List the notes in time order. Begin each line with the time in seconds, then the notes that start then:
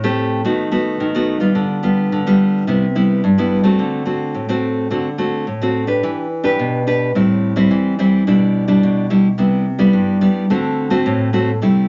Already playing: A2
0.04 A3 C4 G4
0.45 D#3 A3 B3 F#4
0.71 A3 B3 F#4
1.00 D#3
1.15 A3 B3 F#4
1.40 G3 B3 F4
1.55 D3
1.83 G3 B3 F4
2.12 D3
2.27 G3 B3 F4
2.67 C3 G3 B3 E4
2.95 G3 B3 E4
3.24 G2
3.38 G3 B3 E4
3.63 A3 C4 F#4
3.79 D3
4.06 A3 C4 F#4
4.34 A2
4.49 A3 C4 F#4
4.91 D3 A3 C4 F#4
5.18 A3 C4 F#4
5.47 A2
5.61 A3 C4 F#4
5.87 D4 G4 B4
6.03 E3
6.44 D4 G4 B4
6.59 B2
6.87 D4 G4 B4
7.15 A2 G3 C4 E4
7.56 G3 C4 E4
7.71 E3
7.99 G3 C4 E4
8.27 B2 G3 D4 E4
8.68 G3 D4 E4
8.83 B2
9.10 G3 D4 E4
9.38 C3 G3 B3 E4
9.79 G3 B3 E4
9.93 G2
10.21 G3 B3 E4
10.50 D3 A3 C4 F#4
10.90 A3 C4 F#4
11.06 A2
11.33 A3 C4 F#4
11.62 C3 G3 A3 E4